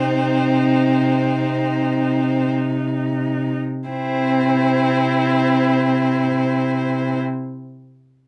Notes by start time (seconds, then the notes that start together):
Already playing: C3 C4 D#4 C5
3.88 C3 C4 E4 C5